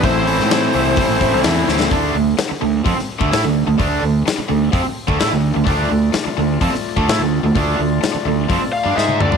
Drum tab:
HH |o-o-o-o-o-o-o---|o---o---o---o---|o---o---o---o---|o---o---o---o---|
SD |---oo-------o-oo|----o----o--o---|----o-------o---|----o----o--o---|
T1 |----------------|----------------|----------------|----------------|
T2 |----------------|----------------|----------------|----------------|
FT |----------------|----------------|----------------|----------------|
BD |o-------o-o-----|o-------o--o----|o-------o--o----|o-------o--o----|

HH |o---o---o-------|
SD |----o-------o---|
T1 |-------------o--|
T2 |--------------o-|
FT |---------------o|
BD |o-------o-------|